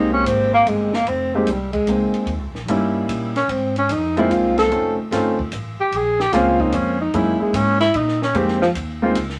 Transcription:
Already playing: C2 G#3 A#3 C4 D#4 G4
0.13 C#4
0.24 G#1 C4, hi-hat pedal, ride
0.54 A#3
0.66 G1 G#3, ride
0.93 A#3, snare
1.07 F1 C4, ride
1.35 G#3 A#3 C4 D#4 G4
1.46 C2, hi-hat pedal, ride
1.51 G3
1.73 G#3, kick, ride
1.86 C#2 G#3 A#3 C4 D#4 G#4, hi-hat pedal, ride
2.14 ride
2.25 D#2, ride
2.39 C#2
2.52 A#1, snare
2.66 G2 G3 A#3 C#4 D#4 E4, ride
3.08 A#2, hi-hat pedal, ride
3.36 C#4, snare, ride
3.48 G#2 C4, ride
3.76 C#4, ride
3.89 F2 D#4, hi-hat pedal, ride
4.16 G#3 A#3 C4 D#4 E4 F4, ride
4.30 C2 F4, hi-hat pedal, ride
4.58 A4, snare, ride
4.70 F1 A3 C4 C#4 D#4 F4, ride
4.98 muted upright bass stroke
5.11 G1 A3 C4 C#4 D#4 F4, snare, hi-hat pedal, ride
5.39 kick
5.51 A1, hi-hat pedal, ride
5.79 G4, muted upright bass stroke
5.92 A#1, ride
5.96 G#4
6.20 G4, snare
6.32 C#2 G#3 A#3 C4 C#4 F4, snare, hi-hat pedal, ride
6.60 D#4, kick
6.72 F2 C#4, hi-hat pedal, ride
7.01 D#4
7.14 F#2 G#3 A#3 C#4 D#4 E4, ride
7.41 G#3, muted upright bass stroke
7.53 G#2 C#4, hi-hat pedal, ride
7.80 E4, snare, ride
7.94 A#2 D#4, ride
8.08 snare
8.22 C#4, snare
8.34 F2 G#3 A#3 C4 D#4 G4, ride
8.48 snare
8.61 F3, snare
8.75 D#2, hi-hat pedal, ride
9.02 G#3 A#3 C4 D#4 F4
9.15 C#2, hi-hat pedal, ride
9.30 snare

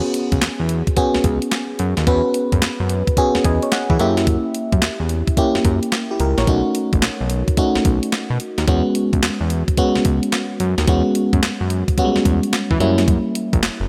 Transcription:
Already playing: B3 C#4 F#4 G#4
0.14 closed hi-hat
0.32 C#2, kick, closed hi-hat
0.42 E2, snare, clap, closed hi-hat
0.60 E2
0.69 closed hi-hat
0.87 kick, closed hi-hat
0.96 B3 C#4 F#4 G#4, kick, closed hi-hat
1.15 C#2, snare
1.24 C#2, kick, closed hi-hat
1.42 closed hi-hat
1.51 snare, clap, closed hi-hat
1.79 F#2, closed hi-hat
1.97 D#2, snare, closed hi-hat
2.07 E2 B3 C#4 F#4 B4, kick, closed hi-hat
2.34 closed hi-hat
2.52 F#2, kick, closed hi-hat
2.62 F#2, snare, clap, closed hi-hat
2.80 F#2
2.89 closed hi-hat
3.07 kick, closed hi-hat
3.17 B3 C#4 F#4 G#4, kick, closed hi-hat
3.35 E2, snare
3.44 E2 B4 D#5 G#5, kick, closed hi-hat
3.62 C#5, closed hi-hat
3.72 F#5, snare, clap, closed hi-hat
3.90 E3 E4 G#4, kick
3.99 F#2 A#3 C#4 E4 G4 E5, closed hi-hat
4.17 snare, closed hi-hat
4.27 kick, closed hi-hat
4.55 closed hi-hat
4.72 F#2, kick, closed hi-hat
4.82 E2, snare, clap, closed hi-hat
5.00 E2
5.09 closed hi-hat
5.27 kick, closed hi-hat
5.37 A#3 C#4 E4 G4, kick, closed hi-hat
5.55 F#2, snare
5.65 F#2, kick, closed hi-hat
5.83 closed hi-hat
5.92 snare, clap, closed hi-hat
6.11 E4 G4
6.20 C#2 G4 A#4, closed hi-hat
6.38 A#1 A#4 C#5, snare, closed hi-hat
6.47 B1 A3 C#4 D#4 F#4, kick, closed hi-hat
6.75 closed hi-hat
6.93 A1, kick, closed hi-hat
7.02 snare, clap, closed hi-hat
7.20 B1
7.30 closed hi-hat
7.48 kick, closed hi-hat
7.57 A3 C#4 D#4 F#4, kick, closed hi-hat
7.75 B1, snare
7.85 B1, kick, closed hi-hat
8.03 closed hi-hat
8.12 snare, clap, closed hi-hat
8.30 B2
8.40 closed hi-hat
8.58 D#2, snare, closed hi-hat
8.68 E2 G#3 B3 C#4 F#4, kick, closed hi-hat
8.95 closed hi-hat
9.13 C#2, kick, closed hi-hat
9.23 snare, clap, closed hi-hat
9.41 E2
9.50 closed hi-hat
9.68 kick, closed hi-hat
9.77 G#3 B3 C#4 F#4, kick, closed hi-hat
9.96 C#2, snare
10.05 C#2, kick, closed hi-hat
10.23 closed hi-hat
10.32 snare, clap, closed hi-hat
10.60 F#2, closed hi-hat
10.78 D#2, snare, closed hi-hat
10.87 E2 G#3 B3 C#4 F#4, kick, closed hi-hat
11.15 closed hi-hat
11.33 F#2, kick, closed hi-hat
11.43 snare, clap, closed hi-hat
11.61 F#2
11.70 closed hi-hat
11.88 kick, closed hi-hat
11.98 G3 B3 C#4 F#4, kick, closed hi-hat
12.04 G#3
12.16 E2, snare
12.25 E2, kick, closed hi-hat
12.43 closed hi-hat
12.53 snare, clap, closed hi-hat
12.71 E3, kick
12.80 F#2 G3 A#3 C#4 E4, closed hi-hat
12.98 snare, closed hi-hat
13.08 kick, closed hi-hat
13.35 closed hi-hat
13.53 A#1, kick, closed hi-hat
13.63 F#1, snare, clap, closed hi-hat
13.80 F#1

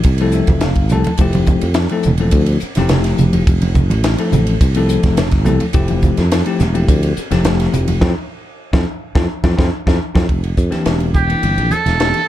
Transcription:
0.03 C2, kick, hi-hat pedal, ride
0.18 F3 A3 C4 E4 A4, ride
0.32 E5, hi-hat pedal
0.47 F1, kick, ride, high conga
0.61 F5, snare, hi-hat pedal, ride, low conga
0.75 kick, ride
0.89 C2 F3 A3 C4 E4 A4 A5, hi-hat pedal, low conga
1.04 ride, high conga
1.18 F1 F3 A3 C4 E4 G4, kick, hi-hat pedal, ride
1.33 ride, high conga
1.46 kick, hi-hat pedal, low conga
1.61 F2, ride
1.74 snare, hi-hat pedal, ride
1.89 F3 A3 C4 E4 A4, ride
2.03 E1, hi-hat pedal, low conga
2.18 F3 A3 C4 E4 A4, ride
2.31 D2, kick, hi-hat pedal, ride
2.46 ride
2.60 muted fretless electric bass stroke, hi-hat pedal
2.75 F1 F3 A3 C4 E4 G4, snare, ride, high conga
2.89 snare, hi-hat pedal, ride, low conga
3.04 snare, ride
3.18 F1, hi-hat pedal, low conga
3.33 ride, high conga
3.47 F1, kick, hi-hat pedal, ride
3.62 ride, high conga
3.75 kick, hi-hat pedal, low conga
3.90 A1, ride, high conga
4.04 snare, hi-hat pedal, ride
4.18 F3 A3 C4 E4 A4, ride
4.32 A1, hi-hat pedal, low conga
4.47 ride
4.61 C2, kick, hi-hat pedal, ride
4.75 F3 A3 C4 E4 A4, ride
4.89 hi-hat pedal
5.03 F1, kick, snare, ride, high conga
5.17 snare, hi-hat pedal, ride, low conga
5.31 kick, snare, ride
5.45 C2 F3 A3 C4 E4 A4, hi-hat pedal, low conga
5.60 ride, high conga
5.73 F1 F3 A3 C4 E4 G4, kick, hi-hat pedal, ride
5.88 ride, high conga
6.02 kick, hi-hat pedal, low conga
6.17 F2, snare, ride, high conga
6.32 snare, hi-hat pedal, ride
6.46 F3 A3 C4 E4 G4, ride
6.59 E1, snare, hi-hat pedal, low conga
6.74 F3 A3 C4 E4 G4, ride
6.88 D2, kick, hi-hat pedal, ride
7.03 ride
7.17 muted fretless electric bass stroke, hi-hat pedal
7.31 F1 F3 A3 C4 E4 G4, snare, ride, high conga
7.45 snare, hi-hat pedal, ride, low conga
7.60 snare, ride
7.73 F1, hi-hat pedal, low conga
7.88 ride, high conga
8.01 F2 C4 E4 F4, kick, snare, high conga
8.73 F2 C4 E4 F4, kick, snare, high conga
9.15 F2 C4 E4 F4, kick, snare, high conga
9.44 F2 C4 E4 F4, kick, snare, high conga
9.57 F2 C4 E4 F4, kick, snare, high conga
9.87 F2 C4 E4 F4, kick, snare, high conga
10.15 F2 C4 E4 F4, kick, snare, high conga
10.29 F1, kick, ride
10.44 ride
10.57 F2, kick, hi-hat pedal
10.71 E3 A#3 C4 D4 G4, muted fretless electric bass stroke, snare, ride, high conga
10.86 E1, snare, ride
11.00 ride
11.14 G4, kick, hi-hat pedal, low conga
11.28 E3 A#3 C4 D4 E4, ride
11.43 G1, ride
11.58 A#1, ride
11.71 A4, hi-hat pedal, high conga
11.86 E1, snare, ride, high conga, low conga
11.99 E3 A#3 C4 D4 G4, snare, ride
12.14 ride

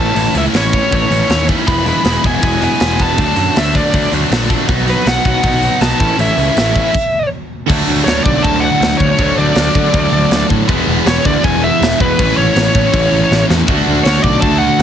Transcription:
Already playing: A2 E3 A3 C#4 E4
0.00 A5
0.15 A1 A2 E3 A3 C#4 E4, open hi-hat
0.34 C#2 A2 E3 A3 C#4 E4 E5, open hi-hat
0.54 A1 A2 E3 A3 C#4 E4 C#5, snare, open hi-hat
0.73 A2 E3 A3 C#4 E4, kick, open hi-hat
0.91 A1 A2 E3 A3 C#4 E4, kick, open hi-hat
0.95 C#5
1.10 A1 A2 E3 A3 C#4 E4, open hi-hat
1.28 D#2 A2 E3 A3 C#4 E4, snare, open hi-hat
1.47 A2 E3 A3 C#4 E4, kick, open hi-hat
1.66 E1 E3 G#3 B3 E4 B5, kick, open hi-hat
1.85 E3 G#3 B3 E4 B5, open hi-hat
2.03 E1 E3 G#3 B3 E4, snare, open hi-hat
2.22 E1 E3 G#3 B3 E4 G#5, kick, open hi-hat
2.42 E1 E3 G#3 B3 E4 G#5, kick, open hi-hat
2.61 E3 G#3 B3 E4 G#5, open hi-hat
2.79 E1 E3 G#3 B3 E4, snare, open hi-hat
2.97 E3 G#3 B3 E4, kick, open hi-hat
3.02 A5
3.18 D2 D3 F#3 A3 D4, kick, open hi-hat
3.36 F#2 D3 F#3 A3 D4, open hi-hat
3.56 D2 D3 F#3 A3 D4 E5, snare, open hi-hat
3.73 D3 F#3 A3 D4 D5, kick, open hi-hat
3.93 D2 D3 F#3 A3 D4, kick, open hi-hat
4.12 D2 D3 F#3 A3 D4, open hi-hat
4.30 A#1 D3 F#3 A3 D4, snare, open hi-hat
4.49 D3 F#3 A3 D4, kick, open hi-hat
4.68 B1 B2 F#3 B3 D#4, kick, open hi-hat
4.86 B2 F#3 B3 D#4 B4, open hi-hat
5.05 B1 B2 F#3 B3 D#4 F#5, snare, open hi-hat
5.24 B1 B2 F#3 B3 D#4 F#5, kick, open hi-hat
5.43 B1 B2 F#3 B3 D#4, kick, open hi-hat
5.62 B2 F#3 B3 D#4, open hi-hat
5.81 B1 B2 F#3 B3 D#4 A5, snare, open hi-hat
5.99 A1 A2 E3 A3 C#4 E4, kick, open hi-hat
6.18 A1 A2 E3 A3 C#4 E4 E5, open hi-hat
6.36 C#2 A2 E3 A3 C#4 E4, open hi-hat
6.55 A1 A2 E3 A3 C#4 E4, snare, open hi-hat
6.74 A2 E3 A3 C#4 E4, kick, open hi-hat
6.94 kick, crash
7.68 D2 D3 F#3 A3 D4, kick, crash
7.88 D2
8.04 D2 C#5, snare, crash
8.24 B1 D5, kick
8.43 D2 A5, kick, crash
8.60 F#5
8.80 D2, snare, crash
8.98 D2 C#5, kick
9.17 D2 D3 F#3 A3 D4, kick, crash
9.37 D2 D5
9.55 D2, snare, crash
9.75 D3, kick
9.94 D2, kick, crash
10.12 D2
10.31 D2, snare, crash
10.50 A2, kick
10.67 E1 E3 G#3 B3 E4, kick, crash
10.87 E1
11.06 E1 C#5, snare, crash
11.25 D2 D5, kick
11.44 E1 G#5, kick, crash
11.64 E5
11.81 E1, snare, crash
12.00 E1 B4, kick
12.18 A1 A2 E3 A3 C#4 E4, kick, crash
12.37 A1 C#5
12.56 A1, snare, crash
12.75 A2, kick
12.93 A1, kick, crash
13.12 A1
13.31 A1, snare
13.50 E2, snare
13.66 D2 D3 A3 D4, kick, crash
13.70 F#4
13.87 D2
14.04 D2 C#5, snare, crash
14.22 B1 D5, kick
14.41 D2 A5, kick, crash
14.58 F#5
14.79 D2, crash

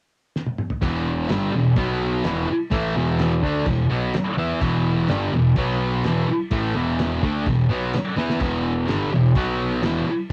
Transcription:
0.36 snare
0.46 high tom
0.58 mid tom
0.70 floor tom
0.82 E1 E2 B2 E3, kick, crash
1.29 G1 G2 D3 G3, snare, crash
1.52 E1 E2 B2
1.76 B1 B2 F#3 B3, kick, crash
2.24 E1 E2 B2 E3, snare, crash
2.48 muted distorted electric guitar stroke, muted picked electric bass stroke
2.71 A1 A2 E3 A3, kick, crash
2.95 E1 E2 B2 E3
3.19 snare, crash
3.42 D2 D3 A3 D4, kick
3.66 E1 E2 B2, kick, crash
3.90 B1 B2 F#3 B3
4.14 muted picked electric bass stroke, muted distorted electric guitar stroke, snare, crash
4.37 E2 E3 B3 E4
4.61 E1 E2 B2 E3, kick, crash
5.08 G1 G2 D3 G3, snare, crash
5.32 E1 E2 B2
5.56 B1 B2 F#3 B3, kick, crash
6.04 E1 E2 B2 E3, snare, crash
6.28 muted picked electric bass stroke, muted distorted electric guitar stroke
6.51 A1 A2 E3 A3, kick, crash
6.75 E1 E2 B2 E3
6.99 snare, crash
7.22 D2 D3 A3 D4, kick
7.46 E1 E2 B2, kick, crash
7.69 B1 B2 F#3 B3
7.93 muted distorted electric guitar stroke, muted picked electric bass stroke, snare, crash
8.16 E2 E3 B3 E4, snare
8.30 snare
8.40 E1 E2 B2 E3, kick, crash
8.88 G1 G2 D3 G3, snare, crash
9.11 E1 E2 B2
9.35 B1 B2 F#3 B3, kick, crash
9.82 E1 E2 B2 E3, snare, crash
10.06 muted picked electric bass stroke, muted distorted electric guitar stroke

